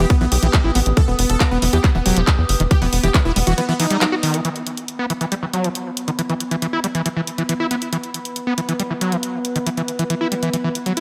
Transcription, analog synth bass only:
0.21 0.27 B1 medium
0.32 0.38 B1 loud
0.43 0.49 B1 medium
0.64 0.71 A1 medium
0.75 0.82 A1 loud
0.86 0.93 A1 medium
1.08 1.14 E1 medium
1.19 1.25 E1 loud
1.30 1.36 E1 medium
1.51 1.58 E1 medium
1.62 1.69 E1 loud
1.73 1.79 E2 loud
1.95 2.01 E1 medium
2.06 2.12 E1 loud
2.17 2.23 E1 loud
2.38 2.45 E2 medium
2.49 2.56 F#1 loud
2.60 2.66 E1 medium
2.82 2.88 E1 medium
2.93 2.99 E1 loud
3.03 3.10 E1 medium
3.25 3.32 E1 medium
3.36 3.43 E1 loud
3.47 3.53 E1 medium

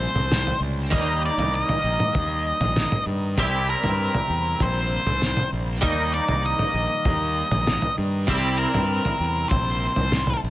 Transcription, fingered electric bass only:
0.15 0.52 C2 medium
0.60 0.93 C#2 medium
0.93 1.29 D#2 loud
1.37 1.62 C2 medium
1.84 1.96 A#1 medium
2.15 2.51 D#2 medium
2.60 2.85 A#1 medium
3.06 3.39 G2 medium
3.37 3.74 C2 medium
3.84 4.08 G2 medium
4.30 4.54 E2 medium
4.60 4.97 A#1 medium
5.06 5.43 C2 medium
5.52 5.83 A#1 medium
5.83 6.19 D#2 loud
6.29 6.53 C2 medium
6.74 6.86 A#1 medium
7.05 7.42 D#2 medium
7.51 7.76 A#1 medium
7.98 8.30 G2 medium
8.28 8.65 C2 medium
8.74 8.99 G2 medium
9.20 9.44 E2 medium
9.51 9.88 A#1 medium
9.97 10.34 C2 medium
10.43 10.50 A#1 medium

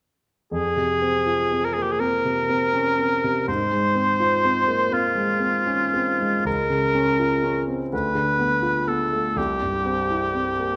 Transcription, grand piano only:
0.51 3.44 F2 soft
0.77 1.17 C3 soft
1.02 1.42 C4 soft
1.26 1.66 F4 soft
1.52 1.91 C4 soft
1.76 2.01 A#3 soft
2.00 2.40 C4 soft
2.25 2.65 C3 soft
2.49 2.89 C4 soft
2.74 2.99 C#4 soft
2.99 3.38 C4 soft
3.24 3.48 C3 soft
3.48 6.42 G#2 soft
3.71 4.11 G#3 soft
3.95 4.35 C4 soft
4.20 4.59 F4 soft
4.45 4.83 C4 soft
4.68 4.92 A#3 soft
4.91 5.31 C4 soft
5.15 5.57 G#3 soft
5.40 5.83 C4 soft
5.67 5.94 C#4 soft
5.94 6.36 C4 soft
6.20 6.46 G#3 soft
6.45 7.88 C#2 soft
6.70 7.10 C#3 soft
6.95 7.34 C#4 soft
7.19 7.58 F4 soft
7.43 7.82 C#4 soft
7.68 7.92 C4 soft
7.93 9.33 D2 soft
8.15 8.54 D3 soft
8.39 8.78 B3 soft
8.62 9.02 F4 soft
8.88 9.27 B3 soft
9.12 9.37 A3 soft
9.36 10.76 C2 soft
9.62 10.01 G2 soft
9.86 10.25 C4 soft
10.10 10.50 E4 soft
10.34 10.74 C4 soft
10.60 10.76 A#3 soft

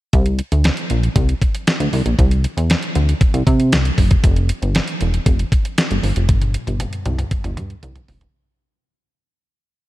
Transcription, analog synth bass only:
0.13 0.41 C2 loud
0.52 0.70 D2 medium
0.91 1.09 A#1 medium
1.16 1.34 C2 loud
1.80 1.89 D2 medium
1.93 2.02 C2 loud
2.06 2.15 A#1 medium
2.19 2.46 C2 loud
2.57 2.75 E2 medium
2.96 3.14 D2 medium
3.34 3.43 C2 loud
3.47 3.74 C3 medium
3.73 3.91 C2 medium
3.98 4.16 F#1 medium
4.24 4.51 F1 loud
4.62 4.80 G1 medium
5.01 5.19 E1 medium
5.26 5.45 F1 medium
5.90 6.00 G1 medium
6.03 6.12 G1 medium
6.16 6.30 F1 medium
6.29 6.56 G1 loud
6.67 6.86 G1 medium
7.06 7.24 C2 medium
7.44 7.59 G1 loud
7.57 7.76 G2 medium
7.83 8.01 C2 loud
8.09 8.27 F1 medium

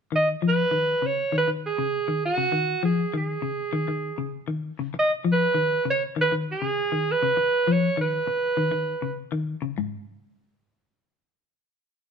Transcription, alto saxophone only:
0.16 0.28 D#5 medium
0.48 1.08 B4 medium
1.06 1.35 C#5 medium
1.38 1.50 B4 medium
1.66 2.21 G#4 medium
2.26 2.81 F#4 medium
2.85 3.13 G#4 medium
3.17 4.33 G#4 medium
4.99 5.12 D#5 loud
5.32 5.85 B4 medium
5.90 6.03 C#5 medium
6.21 6.34 B4 medium
6.52 7.13 G#4 medium
7.11 7.74 B4 loud
7.72 8.00 C#5 medium
8.01 9.16 B4 medium

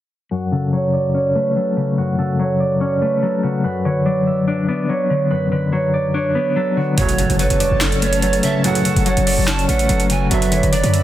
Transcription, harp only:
0.31 1.98 F#4 medium
0.52 1.56 A4 medium
0.73 0.99 C#5 medium
0.93 1.20 D5 medium
1.14 2.39 C#5 medium
1.35 3.01 B4 medium
1.56 2.18 A4 medium
1.98 3.43 F#4 medium
2.19 3.22 A4 medium
2.39 2.66 C#5 medium
2.60 2.86 D5 medium
2.80 3.85 C#5 medium
3.02 3.63 B4 medium
3.22 5.42 A4 medium
3.43 5.87 F#4 medium
3.64 5.30 B4 loud
3.85 4.11 C#5 medium
4.05 4.47 D5 medium
4.27 5.99 E5 medium
4.48 4.68 D5 medium
4.68 4.95 D5 medium
4.89 5.72 C#5 medium
5.30 5.51 B4 medium
5.52 6.35 B4 medium
5.72 5.99 C#5 medium
5.93 6.20 D5 medium
6.14 7.39 C#5 medium
6.35 8.01 B4 medium
6.57 7.19 A4 medium
6.77 6.97 F#4 medium
6.98 8.64 F#4 loud
7.19 8.22 A4 medium
7.39 7.66 C#5 medium
7.60 7.87 D5 medium
7.81 9.06 C#5 medium
8.02 9.68 B4 medium
8.23 8.85 A4 medium
8.65 10.09 F#4 medium
8.85 9.89 A4 medium
9.06 9.32 C#5 medium
9.26 9.53 D5 medium
9.47 10.51 C#5 medium
9.68 10.30 B4 medium
9.89 11.03 A4 medium
10.10 11.03 F#4 medium
10.31 11.03 B4 loud
10.52 10.78 C#5 medium
10.72 11.03 D5 medium
10.94 11.03 E5 medium

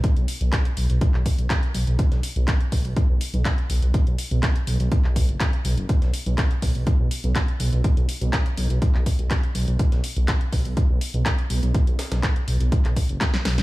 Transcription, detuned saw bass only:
0.17 0.26 B1 medium
0.41 0.50 B1 medium
0.77 0.87 B1 medium
0.90 0.99 B1 medium
1.14 1.23 B1 medium
1.39 1.48 B1 medium
1.75 1.85 B1 medium
1.87 1.97 B1 medium
2.12 2.21 B1 medium
2.36 2.45 B1 medium
2.72 2.82 B1 medium
2.85 2.94 B1 medium
3.09 3.18 B1 medium
3.34 3.43 B1 medium
3.70 3.80 B1 medium
3.82 3.92 B1 medium
4.07 4.16 B1 medium
4.31 4.40 B1 medium
4.67 4.77 B1 medium
4.80 4.89 B1 medium
5.04 5.30 B1 medium
5.29 5.38 F#1 medium
5.65 5.75 B1 loud
5.78 5.87 F#1 medium
6.02 6.11 B1 medium
6.26 6.36 B1 medium
6.62 6.72 B1 medium
6.75 6.84 B1 medium
7.00 7.09 B1 medium
7.24 7.33 B1 medium
7.60 7.70 B1 loud
7.73 7.82 B1 medium
7.97 8.06 B1 medium
8.21 8.31 B1 medium
8.57 8.68 B1 medium
8.70 8.79 B1 medium
8.95 9.04 B1 medium
9.19 9.28 B1 medium
9.55 9.65 B1 medium
9.68 9.77 B1 medium
9.92 10.01 B1 medium
10.17 10.26 B1 medium
10.53 10.63 B1 medium
10.65 10.75 B1 medium
10.90 10.99 B1 medium
11.14 11.23 B1 medium
11.50 11.60 B1 medium
11.63 11.72 B1 medium
11.87 11.96 B1 medium
12.12 12.21 B1 medium
12.48 12.58 B1 medium
12.60 12.70 B1 medium
12.85 12.94 B1 medium
13.09 13.18 F#1 medium
13.45 13.60 B1 loud
13.58 13.63 F#1 medium

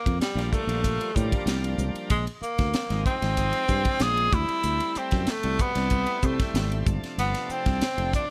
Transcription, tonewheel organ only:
0.37 0.65 F3 medium
0.37 0.65 G3 medium
0.37 0.65 A#3 medium
0.37 0.65 D4 medium
0.68 0.82 F3 medium
0.68 0.82 G3 medium
0.68 0.82 A#3 medium
0.68 0.82 D4 medium
0.83 1.12 F3 medium
0.83 1.12 G3 medium
0.83 1.12 A#3 medium
0.83 1.12 F4 medium
1.15 2.10 F3 medium
1.15 2.10 G3 medium
1.15 2.11 A#3 medium
1.15 2.11 D4 medium
2.90 3.18 F3 medium
2.90 3.18 G#3 medium
2.90 3.18 C4 medium
2.90 3.19 D#4 medium
3.21 3.35 F3 medium
3.21 3.35 G#3 medium
3.21 3.35 C4 medium
3.21 3.35 D#4 medium
3.37 3.65 F3 medium
3.37 3.65 G#3 medium
3.37 3.66 C4 medium
3.37 3.66 D#4 medium
3.69 4.32 F3 medium
3.69 4.33 G#3 medium
3.69 4.32 C4 medium
3.69 4.33 D4 medium
4.32 5.31 G3 medium
4.32 5.31 A3 medium
4.32 5.31 C4 medium
4.32 5.31 E4 medium
5.44 5.72 G3 medium
5.44 5.72 A3 medium
5.44 5.72 C4 medium
5.44 5.72 F#4 medium
5.74 5.88 G3 medium
5.74 5.89 A3 medium
5.74 5.89 C4 medium
5.74 5.89 D4 medium
5.91 6.19 G3 medium
5.91 6.19 A3 medium
5.91 6.20 C4 medium
5.91 6.20 E4 medium
6.23 6.86 G3 medium
6.23 6.85 A3 medium
6.23 6.86 C4 medium
6.23 6.87 E4 medium
6.86 7.84 C3 medium
6.86 7.84 F3 medium
6.86 7.84 A3 medium
6.86 7.85 D4 medium
7.97 8.25 F3 medium
7.97 8.26 A3 medium
7.97 8.26 C4 medium
7.97 8.26 D4 medium

